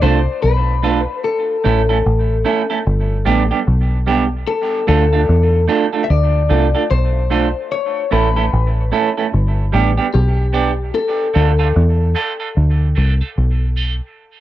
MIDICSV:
0, 0, Header, 1, 4, 480
1, 0, Start_track
1, 0, Tempo, 808625
1, 733, Time_signature, 4, 2, 24, 8
1, 8549, End_track
2, 0, Start_track
2, 0, Title_t, "Clean electric guitar"
2, 0, Program_c, 0, 27
2, 13, Note_on_c, 0, 72, 103
2, 249, Note_off_c, 0, 72, 0
2, 251, Note_on_c, 0, 71, 89
2, 709, Note_off_c, 0, 71, 0
2, 736, Note_on_c, 0, 69, 85
2, 1672, Note_off_c, 0, 69, 0
2, 2656, Note_on_c, 0, 69, 106
2, 2891, Note_off_c, 0, 69, 0
2, 2898, Note_on_c, 0, 69, 93
2, 3353, Note_off_c, 0, 69, 0
2, 3586, Note_on_c, 0, 76, 82
2, 3617, Note_off_c, 0, 76, 0
2, 3623, Note_on_c, 0, 74, 96
2, 4076, Note_off_c, 0, 74, 0
2, 4099, Note_on_c, 0, 72, 96
2, 4579, Note_off_c, 0, 72, 0
2, 4581, Note_on_c, 0, 73, 100
2, 4821, Note_off_c, 0, 73, 0
2, 4823, Note_on_c, 0, 71, 77
2, 5756, Note_off_c, 0, 71, 0
2, 6017, Note_on_c, 0, 67, 79
2, 6473, Note_off_c, 0, 67, 0
2, 6497, Note_on_c, 0, 69, 93
2, 7238, Note_off_c, 0, 69, 0
2, 8549, End_track
3, 0, Start_track
3, 0, Title_t, "Clean electric guitar"
3, 0, Program_c, 1, 27
3, 10, Note_on_c, 1, 57, 74
3, 12, Note_on_c, 1, 62, 84
3, 15, Note_on_c, 1, 65, 87
3, 17, Note_on_c, 1, 69, 87
3, 109, Note_off_c, 1, 57, 0
3, 110, Note_off_c, 1, 62, 0
3, 112, Note_off_c, 1, 65, 0
3, 112, Note_off_c, 1, 69, 0
3, 490, Note_on_c, 1, 57, 77
3, 493, Note_on_c, 1, 62, 84
3, 496, Note_on_c, 1, 65, 82
3, 497, Note_on_c, 1, 69, 82
3, 589, Note_off_c, 1, 57, 0
3, 591, Note_off_c, 1, 62, 0
3, 592, Note_off_c, 1, 65, 0
3, 593, Note_off_c, 1, 69, 0
3, 972, Note_on_c, 1, 57, 73
3, 975, Note_on_c, 1, 61, 80
3, 977, Note_on_c, 1, 64, 82
3, 980, Note_on_c, 1, 69, 89
3, 1071, Note_off_c, 1, 57, 0
3, 1073, Note_off_c, 1, 61, 0
3, 1073, Note_off_c, 1, 64, 0
3, 1075, Note_off_c, 1, 69, 0
3, 1122, Note_on_c, 1, 69, 60
3, 1125, Note_on_c, 1, 64, 57
3, 1128, Note_on_c, 1, 61, 53
3, 1130, Note_on_c, 1, 57, 50
3, 1169, Note_off_c, 1, 69, 0
3, 1170, Note_off_c, 1, 64, 0
3, 1172, Note_off_c, 1, 61, 0
3, 1173, Note_off_c, 1, 57, 0
3, 1452, Note_on_c, 1, 57, 79
3, 1455, Note_on_c, 1, 61, 92
3, 1458, Note_on_c, 1, 64, 81
3, 1459, Note_on_c, 1, 69, 91
3, 1551, Note_off_c, 1, 57, 0
3, 1553, Note_off_c, 1, 61, 0
3, 1554, Note_off_c, 1, 64, 0
3, 1554, Note_off_c, 1, 69, 0
3, 1602, Note_on_c, 1, 69, 55
3, 1605, Note_on_c, 1, 64, 52
3, 1607, Note_on_c, 1, 61, 50
3, 1609, Note_on_c, 1, 57, 49
3, 1649, Note_off_c, 1, 69, 0
3, 1651, Note_off_c, 1, 64, 0
3, 1652, Note_off_c, 1, 61, 0
3, 1653, Note_off_c, 1, 57, 0
3, 1931, Note_on_c, 1, 55, 86
3, 1933, Note_on_c, 1, 59, 87
3, 1937, Note_on_c, 1, 62, 91
3, 1938, Note_on_c, 1, 67, 90
3, 2031, Note_off_c, 1, 55, 0
3, 2032, Note_off_c, 1, 59, 0
3, 2034, Note_off_c, 1, 62, 0
3, 2034, Note_off_c, 1, 67, 0
3, 2083, Note_on_c, 1, 67, 57
3, 2086, Note_on_c, 1, 62, 57
3, 2088, Note_on_c, 1, 59, 51
3, 2090, Note_on_c, 1, 55, 45
3, 2130, Note_off_c, 1, 67, 0
3, 2132, Note_off_c, 1, 59, 0
3, 2132, Note_off_c, 1, 62, 0
3, 2133, Note_off_c, 1, 55, 0
3, 2412, Note_on_c, 1, 55, 75
3, 2415, Note_on_c, 1, 59, 83
3, 2418, Note_on_c, 1, 62, 85
3, 2420, Note_on_c, 1, 67, 86
3, 2512, Note_off_c, 1, 55, 0
3, 2513, Note_off_c, 1, 59, 0
3, 2515, Note_off_c, 1, 62, 0
3, 2515, Note_off_c, 1, 67, 0
3, 2893, Note_on_c, 1, 57, 84
3, 2896, Note_on_c, 1, 62, 81
3, 2897, Note_on_c, 1, 65, 96
3, 2899, Note_on_c, 1, 69, 82
3, 2992, Note_off_c, 1, 57, 0
3, 2994, Note_off_c, 1, 62, 0
3, 2994, Note_off_c, 1, 65, 0
3, 2995, Note_off_c, 1, 69, 0
3, 3045, Note_on_c, 1, 69, 57
3, 3047, Note_on_c, 1, 65, 53
3, 3049, Note_on_c, 1, 62, 57
3, 3052, Note_on_c, 1, 57, 46
3, 3091, Note_off_c, 1, 69, 0
3, 3092, Note_off_c, 1, 65, 0
3, 3093, Note_off_c, 1, 62, 0
3, 3095, Note_off_c, 1, 57, 0
3, 3371, Note_on_c, 1, 57, 84
3, 3375, Note_on_c, 1, 62, 90
3, 3377, Note_on_c, 1, 65, 95
3, 3379, Note_on_c, 1, 69, 93
3, 3471, Note_off_c, 1, 57, 0
3, 3473, Note_off_c, 1, 62, 0
3, 3474, Note_off_c, 1, 65, 0
3, 3475, Note_off_c, 1, 69, 0
3, 3520, Note_on_c, 1, 69, 66
3, 3524, Note_on_c, 1, 65, 55
3, 3527, Note_on_c, 1, 62, 53
3, 3529, Note_on_c, 1, 57, 49
3, 3569, Note_off_c, 1, 69, 0
3, 3571, Note_off_c, 1, 65, 0
3, 3572, Note_off_c, 1, 62, 0
3, 3573, Note_off_c, 1, 57, 0
3, 3856, Note_on_c, 1, 57, 71
3, 3858, Note_on_c, 1, 62, 74
3, 3860, Note_on_c, 1, 65, 86
3, 3863, Note_on_c, 1, 69, 81
3, 3954, Note_off_c, 1, 57, 0
3, 3955, Note_off_c, 1, 62, 0
3, 3956, Note_off_c, 1, 65, 0
3, 3957, Note_off_c, 1, 69, 0
3, 4006, Note_on_c, 1, 69, 61
3, 4010, Note_on_c, 1, 65, 54
3, 4011, Note_on_c, 1, 62, 48
3, 4013, Note_on_c, 1, 57, 45
3, 4052, Note_off_c, 1, 69, 0
3, 4054, Note_off_c, 1, 62, 0
3, 4054, Note_off_c, 1, 65, 0
3, 4056, Note_off_c, 1, 57, 0
3, 4336, Note_on_c, 1, 57, 75
3, 4338, Note_on_c, 1, 62, 77
3, 4341, Note_on_c, 1, 65, 88
3, 4343, Note_on_c, 1, 69, 83
3, 4434, Note_off_c, 1, 57, 0
3, 4435, Note_off_c, 1, 62, 0
3, 4437, Note_off_c, 1, 65, 0
3, 4437, Note_off_c, 1, 69, 0
3, 4813, Note_on_c, 1, 57, 73
3, 4816, Note_on_c, 1, 61, 82
3, 4820, Note_on_c, 1, 64, 86
3, 4821, Note_on_c, 1, 69, 81
3, 4913, Note_off_c, 1, 57, 0
3, 4914, Note_off_c, 1, 61, 0
3, 4916, Note_off_c, 1, 64, 0
3, 4917, Note_off_c, 1, 69, 0
3, 4965, Note_on_c, 1, 69, 66
3, 4968, Note_on_c, 1, 64, 56
3, 4969, Note_on_c, 1, 61, 57
3, 4972, Note_on_c, 1, 57, 54
3, 5011, Note_off_c, 1, 69, 0
3, 5013, Note_off_c, 1, 64, 0
3, 5014, Note_off_c, 1, 61, 0
3, 5015, Note_off_c, 1, 57, 0
3, 5293, Note_on_c, 1, 57, 79
3, 5296, Note_on_c, 1, 61, 81
3, 5299, Note_on_c, 1, 64, 83
3, 5300, Note_on_c, 1, 69, 93
3, 5393, Note_off_c, 1, 57, 0
3, 5394, Note_off_c, 1, 61, 0
3, 5396, Note_off_c, 1, 64, 0
3, 5396, Note_off_c, 1, 69, 0
3, 5446, Note_on_c, 1, 69, 67
3, 5449, Note_on_c, 1, 64, 64
3, 5451, Note_on_c, 1, 61, 61
3, 5453, Note_on_c, 1, 57, 53
3, 5492, Note_off_c, 1, 69, 0
3, 5494, Note_off_c, 1, 64, 0
3, 5495, Note_off_c, 1, 61, 0
3, 5496, Note_off_c, 1, 57, 0
3, 5772, Note_on_c, 1, 55, 76
3, 5775, Note_on_c, 1, 59, 83
3, 5776, Note_on_c, 1, 62, 87
3, 5780, Note_on_c, 1, 67, 86
3, 5872, Note_off_c, 1, 55, 0
3, 5874, Note_off_c, 1, 59, 0
3, 5874, Note_off_c, 1, 62, 0
3, 5876, Note_off_c, 1, 67, 0
3, 5921, Note_on_c, 1, 67, 61
3, 5923, Note_on_c, 1, 62, 52
3, 5927, Note_on_c, 1, 59, 60
3, 5928, Note_on_c, 1, 55, 55
3, 5969, Note_off_c, 1, 67, 0
3, 5971, Note_off_c, 1, 62, 0
3, 5972, Note_off_c, 1, 59, 0
3, 5973, Note_off_c, 1, 55, 0
3, 6250, Note_on_c, 1, 55, 83
3, 6253, Note_on_c, 1, 59, 84
3, 6256, Note_on_c, 1, 62, 84
3, 6258, Note_on_c, 1, 67, 88
3, 6351, Note_off_c, 1, 55, 0
3, 6352, Note_off_c, 1, 59, 0
3, 6354, Note_off_c, 1, 62, 0
3, 6355, Note_off_c, 1, 67, 0
3, 6730, Note_on_c, 1, 57, 84
3, 6734, Note_on_c, 1, 62, 82
3, 6737, Note_on_c, 1, 65, 84
3, 6738, Note_on_c, 1, 69, 96
3, 6831, Note_off_c, 1, 57, 0
3, 6833, Note_off_c, 1, 62, 0
3, 6834, Note_off_c, 1, 65, 0
3, 6835, Note_off_c, 1, 69, 0
3, 6880, Note_on_c, 1, 69, 63
3, 6883, Note_on_c, 1, 65, 63
3, 6887, Note_on_c, 1, 62, 58
3, 6889, Note_on_c, 1, 57, 58
3, 6929, Note_off_c, 1, 69, 0
3, 6930, Note_off_c, 1, 65, 0
3, 6932, Note_off_c, 1, 62, 0
3, 6933, Note_off_c, 1, 57, 0
3, 7211, Note_on_c, 1, 57, 83
3, 7214, Note_on_c, 1, 62, 88
3, 7216, Note_on_c, 1, 65, 88
3, 7219, Note_on_c, 1, 69, 97
3, 7311, Note_off_c, 1, 57, 0
3, 7313, Note_off_c, 1, 62, 0
3, 7314, Note_off_c, 1, 65, 0
3, 7315, Note_off_c, 1, 69, 0
3, 7359, Note_on_c, 1, 69, 63
3, 7361, Note_on_c, 1, 65, 57
3, 7365, Note_on_c, 1, 62, 55
3, 7367, Note_on_c, 1, 57, 47
3, 7408, Note_off_c, 1, 69, 0
3, 7410, Note_off_c, 1, 65, 0
3, 7412, Note_off_c, 1, 57, 0
3, 7412, Note_off_c, 1, 62, 0
3, 7689, Note_on_c, 1, 57, 89
3, 7692, Note_on_c, 1, 62, 90
3, 7695, Note_on_c, 1, 65, 90
3, 7698, Note_on_c, 1, 69, 103
3, 7790, Note_off_c, 1, 57, 0
3, 7792, Note_off_c, 1, 62, 0
3, 7793, Note_off_c, 1, 65, 0
3, 7795, Note_off_c, 1, 69, 0
3, 7841, Note_on_c, 1, 69, 61
3, 7844, Note_on_c, 1, 65, 55
3, 7847, Note_on_c, 1, 62, 49
3, 7849, Note_on_c, 1, 57, 51
3, 7889, Note_off_c, 1, 69, 0
3, 7891, Note_off_c, 1, 65, 0
3, 7892, Note_off_c, 1, 62, 0
3, 7893, Note_off_c, 1, 57, 0
3, 8168, Note_on_c, 1, 57, 80
3, 8171, Note_on_c, 1, 62, 83
3, 8173, Note_on_c, 1, 65, 95
3, 8176, Note_on_c, 1, 69, 98
3, 8270, Note_off_c, 1, 57, 0
3, 8271, Note_off_c, 1, 62, 0
3, 8272, Note_off_c, 1, 65, 0
3, 8274, Note_off_c, 1, 69, 0
3, 8549, End_track
4, 0, Start_track
4, 0, Title_t, "Fingered electric bass"
4, 0, Program_c, 2, 33
4, 16, Note_on_c, 2, 36, 89
4, 156, Note_off_c, 2, 36, 0
4, 258, Note_on_c, 2, 35, 82
4, 623, Note_off_c, 2, 35, 0
4, 982, Note_on_c, 2, 33, 88
4, 1205, Note_off_c, 2, 33, 0
4, 1222, Note_on_c, 2, 33, 80
4, 1444, Note_off_c, 2, 33, 0
4, 1701, Note_on_c, 2, 31, 88
4, 1924, Note_off_c, 2, 31, 0
4, 1942, Note_on_c, 2, 33, 95
4, 2080, Note_off_c, 2, 33, 0
4, 2181, Note_on_c, 2, 35, 83
4, 2635, Note_off_c, 2, 35, 0
4, 2900, Note_on_c, 2, 38, 92
4, 3124, Note_off_c, 2, 38, 0
4, 3140, Note_on_c, 2, 40, 89
4, 3364, Note_off_c, 2, 40, 0
4, 3622, Note_on_c, 2, 38, 82
4, 3845, Note_off_c, 2, 38, 0
4, 3862, Note_on_c, 2, 36, 90
4, 4000, Note_off_c, 2, 36, 0
4, 4102, Note_on_c, 2, 35, 83
4, 4466, Note_off_c, 2, 35, 0
4, 4823, Note_on_c, 2, 33, 92
4, 5046, Note_off_c, 2, 33, 0
4, 5064, Note_on_c, 2, 33, 88
4, 5286, Note_off_c, 2, 33, 0
4, 5542, Note_on_c, 2, 31, 91
4, 5765, Note_off_c, 2, 31, 0
4, 5782, Note_on_c, 2, 33, 97
4, 5920, Note_off_c, 2, 33, 0
4, 6021, Note_on_c, 2, 35, 91
4, 6475, Note_off_c, 2, 35, 0
4, 6742, Note_on_c, 2, 38, 91
4, 6965, Note_off_c, 2, 38, 0
4, 6982, Note_on_c, 2, 40, 93
4, 7205, Note_off_c, 2, 40, 0
4, 7461, Note_on_c, 2, 38, 91
4, 7684, Note_off_c, 2, 38, 0
4, 7702, Note_on_c, 2, 36, 90
4, 7840, Note_off_c, 2, 36, 0
4, 7941, Note_on_c, 2, 35, 86
4, 8305, Note_off_c, 2, 35, 0
4, 8549, End_track
0, 0, End_of_file